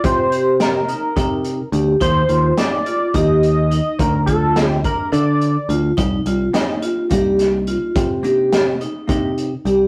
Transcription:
0.00 0.16 F4 medium
0.00 kick loud
0.00 closed hi-hat medium
0.04 0.90 C3 medium
0.04 0.56 C5 medium
0.32 0.72 G4 medium
0.32 closed hi-hat medium
0.60 1.70 A#4 medium
0.60 snare loud
0.60 closed hi-hat medium
0.89 1.09 D#4 medium
0.89 closed hi-hat medium
1.16 1.60 C3 medium
1.16 1.56 D#4 medium
1.16 kick medium
1.16 closed hi-hat medium
1.45 closed hi-hat medium
1.72 1.94 D2 medium
1.72 1.93 G4 medium
1.72 closed hi-hat medium
2.00 2.23 D#2 medium
2.00 2.21 D#4 medium
2.00 2.54 C5 loud
2.00 kick loud
2.00 closed hi-hat medium
2.29 2.51 D#2 medium
2.29 2.49 F4 medium
2.29 closed hi-hat medium
2.57 2.77 D#4 medium
2.57 3.16 D5 loud
2.57 snare loud
2.57 closed hi-hat medium
2.86 3.06 F4 medium
2.86 closed hi-hat medium
3.14 3.79 D#2 medium
3.14 3.54 G4 medium
3.14 4.00 D#5 loud
3.14 kick loud
3.14 closed hi-hat medium
3.43 closed hi-hat medium
3.71 4.11 D#4 medium
3.71 closed hi-hat medium
3.99 4.86 D2 medium
3.99 4.25 A#4 loud
3.99 kick loud
3.99 closed hi-hat medium
4.26 4.67 F4 medium
4.26 4.67 A4 loud
4.26 kick medium
4.26 closed hi-hat medium
4.56 snare loud
4.56 closed hi-hat medium
4.67 4.79 G4 loud
4.84 5.04 D4 medium
4.84 5.11 A#4 medium
4.84 kick medium
4.84 closed hi-hat soft
5.12 5.56 D3 medium
5.12 5.52 D4 medium
5.12 5.72 D5 medium
5.12 closed hi-hat medium
5.41 closed hi-hat medium
5.69 5.90 D2 medium
5.69 5.89 F4 medium
5.69 closed hi-hat medium
5.97 6.19 C2 medium
5.97 6.17 D#4 medium
5.97 kick loud
5.97 closed hi-hat medium
6.26 6.47 C2 medium
6.26 6.46 F4 medium
6.26 closed hi-hat medium
6.53 7.09 A#3 medium
6.53 7.09 D4 medium
6.53 6.74 D#4 medium
6.53 7.10 D#4 medium
6.53 7.10 G4 medium
6.53 snare loud
6.53 closed hi-hat medium
6.82 7.02 F4 medium
6.82 closed hi-hat medium
7.10 7.76 C2 medium
7.10 7.90 A#3 medium
7.10 7.90 D4 medium
7.10 7.90 D#4 medium
7.10 7.51 G4 medium
7.10 7.90 G4 medium
7.10 kick loud
7.10 closed hi-hat medium
7.39 snare soft
7.39 closed hi-hat medium
7.67 8.08 F4 medium
7.67 closed hi-hat medium
7.96 8.83 C3 medium
7.96 kick loud
7.96 closed hi-hat medium
8.23 8.63 A#3 medium
8.23 8.63 D4 medium
8.23 8.63 D#4 soft
8.23 8.64 G4 medium
8.23 closed hi-hat soft
8.53 snare loud
8.53 closed hi-hat medium
8.81 9.01 D#4 medium
8.81 closed hi-hat medium
9.08 9.52 C3 medium
9.08 9.28 A#3 medium
9.08 9.28 D4 medium
9.08 9.29 D#4 medium
9.08 9.49 D#4 medium
9.08 9.29 G4 medium
9.08 kick medium
9.08 closed hi-hat medium
9.38 closed hi-hat medium
9.65 9.87 C2 medium
9.65 9.86 G4 medium
9.65 closed hi-hat medium

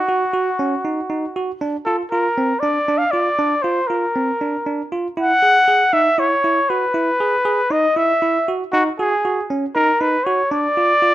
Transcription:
0.00 1.36 F#4 medium
0.08 0.23 F#4 medium
0.34 0.48 F#4 medium
0.59 0.74 C#4 medium
0.85 0.99 D#4 medium
1.10 1.24 D#4 medium
1.36 1.51 F#4 medium
1.61 1.76 D4 medium
1.85 2.01 F4 medium
1.85 1.97 A4 medium
2.11 2.27 F4 medium
2.11 2.62 A#4 medium
2.38 2.52 C4 medium
2.60 2.77 D4 medium
2.60 3.00 D5 medium
2.88 3.03 D4 medium
2.98 3.13 F5 medium
3.11 3.28 F4 medium
3.11 3.64 D5 medium
3.39 3.53 D4 medium
3.62 3.79 F4 medium
3.62 3.89 C5 medium
3.88 4.05 F4 medium
3.88 4.91 A#4 medium
4.16 4.30 C4 medium
4.41 4.56 D4 medium
4.66 4.81 D4 medium
4.92 5.07 F4 medium
5.17 5.32 E4 medium
5.17 5.95 F#5 loud
5.42 5.57 G#4 medium
5.68 5.83 G#4 medium
5.93 6.08 D#4 medium
5.93 6.21 E5 loud
6.18 6.33 E4 medium
6.18 6.71 C#5 medium
6.44 6.59 E4 medium
6.70 6.85 F#4 medium
6.70 7.73 B4 medium
6.94 7.09 E4 medium
7.20 7.35 G#4 medium
7.45 7.60 G#4 medium
7.71 7.85 D#4 medium
7.71 7.98 D#5 medium
7.97 8.11 E4 medium
7.97 8.54 E5 loud
8.22 8.37 E4 medium
8.48 8.63 F#4 medium
8.72 8.88 D#4 medium
8.72 8.84 F#4 medium
8.99 9.14 F#4 medium
8.99 9.45 G#4 medium
9.25 9.39 F#4 medium
9.50 9.65 C#4 medium
9.75 9.90 D#4 medium
9.75 10.03 A#4 medium
10.01 10.16 D#4 medium
10.01 10.27 B4 medium
10.26 10.41 F#4 medium
10.26 10.53 C#5 medium
10.51 10.66 D4 medium
10.51 11.14 D5 loud
10.77 10.92 F4 medium
11.02 11.14 F4 medium

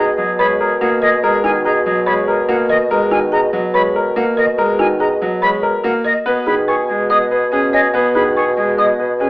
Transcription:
0.00 6.14 B2 medium
0.00 0.12 G#4 medium
0.00 0.24 G#4 medium
0.00 0.24 D#5 medium
0.18 0.45 F#3 medium
0.18 0.32 G#4 medium
0.39 0.66 G#3 medium
0.39 0.53 G#4 medium
0.39 0.66 B4 loud
0.39 0.66 C#5 medium
0.39 0.47 B5 medium
0.60 0.75 G#4 medium
0.60 0.87 A#4 medium
0.81 1.08 A#3 loud
0.81 1.08 F#4 medium
0.81 0.96 G#4 medium
0.81 0.89 F#5 medium
1.02 1.17 G#4 medium
1.02 1.29 A#4 medium
1.02 1.10 D#5 loud
1.02 1.29 D#5 medium
1.23 1.50 G#3 loud
1.23 1.38 G#4 medium
1.23 1.50 A#4 loud
1.44 1.71 D#3 medium
1.44 1.71 F#4 medium
1.44 1.59 G#4 medium
1.44 1.52 G#5 medium
1.65 1.92 G#4 medium
1.65 1.80 G#4 medium
1.65 1.92 D#5 medium
1.65 1.73 A#5 medium
1.86 2.13 F#3 medium
1.86 2.01 G#4 medium
2.06 2.34 G#3 medium
2.06 2.22 G#4 medium
2.06 2.34 B4 loud
2.06 2.34 C#5 medium
2.06 2.15 B5 medium
2.28 2.43 G#4 soft
2.28 2.55 A#4 medium
2.48 2.76 A#3 loud
2.48 2.76 F#4 medium
2.48 2.63 G#4 soft
2.48 2.57 F#5 medium
2.69 2.97 A#4 medium
2.69 2.77 D#5 medium
2.69 2.97 D#5 medium
2.90 3.18 G#3 loud
2.90 3.18 A#4 loud
3.11 3.39 D#3 medium
3.11 3.39 F#4 medium
3.11 3.19 G#5 medium
3.32 3.60 G#4 medium
3.32 3.60 D#5 medium
3.32 3.40 A#5 medium
3.53 3.81 F#3 loud
3.74 4.02 G#3 medium
3.74 4.02 B4 loud
3.74 4.02 C#5 medium
3.74 3.82 B5 loud
3.96 4.23 A#4 medium
4.16 4.44 A#3 loud
4.16 4.44 F#4 medium
4.16 4.25 F#5 medium
4.37 4.65 A#4 medium
4.37 4.45 D#5 medium
4.37 4.65 D#5 medium
4.58 4.86 G#3 loud
4.58 4.86 A#4 loud
4.79 5.07 D#3 medium
4.79 5.07 F#4 loud
4.79 4.87 G#5 medium
5.00 5.28 G#4 medium
5.00 5.28 D#5 medium
5.00 5.08 A#5 medium
5.22 5.49 F#3 loud
5.42 5.70 G#3 medium
5.42 5.70 B4 loud
5.42 5.70 C#5 medium
5.42 5.50 B5 loud
5.63 5.91 A#4 medium
5.84 6.12 A#3 loud
5.84 6.11 F#4 medium
5.84 5.92 F#5 medium
6.05 6.32 A#4 medium
6.05 6.32 D#5 medium
6.05 6.13 D#5 loud
6.26 9.30 B2 medium
6.26 6.53 B3 medium
6.26 6.40 G#4 soft
6.26 6.53 B4 loud
6.46 6.74 D#3 medium
6.46 6.74 G#4 medium
6.46 6.62 G#4 medium
6.46 6.55 B5 medium
6.68 6.83 G#4 medium
6.68 6.95 B4 medium
6.68 6.95 G#5 medium
6.68 6.76 C#6 medium
6.89 7.17 G#3 medium
6.89 7.04 G#4 medium
7.10 7.37 B3 medium
7.10 7.25 G#4 medium
7.10 7.37 D#5 medium
7.10 7.18 D#6 medium
7.31 7.46 G#4 medium
7.31 7.58 B4 medium
7.52 7.79 C#4 medium
7.52 7.67 G#4 medium
7.52 7.80 G#4 medium
7.52 7.60 G#5 medium
7.73 7.88 G#4 medium
7.73 8.00 C#5 medium
7.73 7.81 D#5 loud
7.73 8.01 G#5 medium
7.94 8.21 B3 loud
7.94 8.09 G#4 medium
7.94 8.22 B4 medium
8.15 8.42 D#3 medium
8.15 8.42 G#4 medium
8.15 8.30 G#4 medium
8.15 8.23 B5 medium
8.36 8.51 G#4 medium
8.36 8.64 B4 medium
8.36 8.64 G#5 medium
8.36 8.44 C#6 medium
8.57 8.84 G#3 medium
8.57 8.72 G#4 medium
8.77 9.05 B3 medium
8.77 8.93 G#4 medium
8.77 9.05 D#5 medium
8.77 9.06 D#5 medium
8.77 8.86 D#6 medium
8.99 9.14 G#4 soft
8.99 9.26 B4 medium
9.20 9.30 C#4 medium
9.20 9.30 G#4 soft
9.20 9.30 G#4 medium
9.20 9.28 G#5 medium

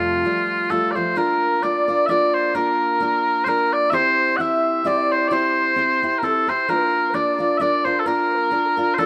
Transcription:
0.00 0.24 F2 medium
0.00 0.24 C3 medium
0.00 0.25 F3 medium
0.00 0.24 G3 medium
0.00 0.25 A3 medium
0.00 0.27 F4 medium
0.00 0.70 F4 medium
0.00 0.71 F4 medium
0.25 0.69 F3 medium
0.25 0.70 G3 medium
0.25 0.70 A3 soft
0.25 0.71 F4 medium
0.70 0.95 F3 medium
0.70 0.95 G3 medium
0.70 0.95 A3 medium
0.70 0.94 F4 medium
0.70 0.91 A4 medium
0.70 0.99 A4 medium
0.91 0.95 D5 medium
0.95 1.16 F3 soft
0.95 1.16 G3 soft
0.95 1.17 A3 soft
0.95 1.16 F4 soft
0.95 1.17 C5 medium
0.95 1.11 C5 medium
1.11 1.19 C5 medium
1.16 1.62 A#3 medium
1.16 1.62 D4 medium
1.16 1.63 F4 medium
1.16 1.63 A#4 loud
1.16 1.62 A#4 medium
1.16 1.63 A#4 medium
1.62 1.88 A#3 medium
1.62 1.88 D4 medium
1.62 1.88 F4 soft
1.62 1.87 A#4 medium
1.62 2.05 D5 medium
1.62 2.06 D5 medium
1.88 2.08 D4 soft
1.88 2.09 F4 soft
1.88 2.09 A#4 medium
2.06 2.53 A#3 medium
2.06 2.54 D4 medium
2.06 2.58 D5 medium
2.06 2.34 D5 loud
2.06 2.10 E5 loud
2.10 2.55 F4 medium
2.10 2.55 A#4 medium
2.34 2.55 C5 medium
2.55 2.99 A#3 medium
2.55 3.00 D4 medium
2.55 3.01 F4 medium
2.55 3.44 A#4 loud
2.55 3.23 A#4 medium
2.55 3.01 A#4 medium
3.00 3.45 A#3 medium
3.00 3.46 D4 medium
3.00 3.47 F4 medium
3.00 3.47 A#4 medium
3.44 3.91 A#3 medium
3.44 3.93 D4 medium
3.44 3.93 F4 medium
3.44 3.71 A#4 medium
3.44 3.48 C5 loud
3.48 3.73 A#4 loud
3.48 3.93 A#4 medium
3.73 3.90 D5 loud
3.73 3.95 D5 medium
3.90 4.37 C4 medium
3.90 4.39 E4 medium
3.90 4.39 G4 medium
3.90 4.39 C5 medium
3.90 4.37 C5 loud
3.90 3.94 E5 loud
4.37 4.83 C4 soft
4.37 4.84 E4 medium
4.37 4.85 G4 soft
4.37 4.87 E5 loud
4.37 4.87 E5 medium
4.37 4.41 F#5 medium
4.41 4.86 C5 medium
4.84 5.30 C4 medium
4.84 5.30 E4 medium
4.84 5.30 G4 medium
4.84 5.31 C5 medium
4.84 4.98 D5 medium
4.84 5.12 D5 loud
4.97 5.02 E5 medium
5.01 5.16 D5 medium
5.12 5.28 C5 medium
5.12 5.18 C5 medium
5.16 5.35 D5 medium
5.28 5.75 C4 medium
5.28 5.76 E4 medium
5.28 5.77 G4 medium
5.28 5.32 D5 loud
5.32 6.18 C5 loud
5.32 5.78 C5 medium
5.32 5.98 C5 medium
5.76 6.02 C4 medium
5.76 6.02 E4 medium
5.76 6.02 G4 soft
5.76 6.01 C5 medium
6.02 6.22 E4 soft
6.02 6.24 G4 medium
6.02 6.23 C5 medium
6.18 6.24 A#4 medium
6.23 6.48 C4 medium
6.23 6.48 E4 medium
6.23 6.47 G4 medium
6.23 6.49 A4 loud
6.23 6.30 A4 medium
6.23 6.46 C5 medium
6.47 6.69 E4 soft
6.47 6.69 G4 soft
6.47 6.69 C5 soft
6.47 6.71 C5 medium
6.47 6.69 C5 medium
6.68 7.13 A#3 medium
6.68 7.13 D4 medium
6.68 7.14 F4 medium
6.68 7.14 A#4 loud
6.68 7.11 A#4 medium
6.68 7.15 A#4 medium
7.09 7.18 C5 medium
7.14 7.39 A#3 medium
7.14 7.39 D4 medium
7.14 7.39 F4 medium
7.14 7.37 A#4 medium
7.14 7.57 D5 medium
7.14 7.60 D5 medium
7.38 7.60 D4 soft
7.38 7.60 F4 soft
7.38 7.60 A#4 medium
7.57 7.85 A#3 medium
7.57 7.86 D4 medium
7.57 7.86 D5 medium
7.57 7.85 D5 loud
7.57 7.61 E5 loud
7.62 7.85 F4 medium
7.62 7.84 A#4 medium
7.84 8.05 D4 soft
7.84 8.06 F4 soft
7.84 8.06 A#4 soft
7.84 8.07 C5 medium
7.84 7.99 C5 medium
7.99 8.06 A4 medium
8.05 8.50 A#3 medium
8.05 8.50 D4 medium
8.05 8.51 F4 medium
8.05 8.35 A#4 medium
8.05 8.94 A#4 loud
8.05 8.52 A#4 medium
8.33 8.66 A#4 medium
8.33 8.38 C5 medium
8.51 8.76 A#3 medium
8.51 8.77 D4 medium
8.51 8.77 F4 soft
8.51 8.76 A#4 soft
8.64 8.68 A4 medium
8.64 8.99 A#4 medium
8.77 8.98 D4 soft
8.77 8.98 F4 medium
8.77 8.98 A#4 medium
8.94 9.06 A4 medium
8.94 8.98 C5 medium
8.98 9.06 A#3 medium
8.98 9.06 D4 medium
8.98 9.06 F4 medium
8.98 9.06 A4 medium
8.98 9.06 A#4 medium

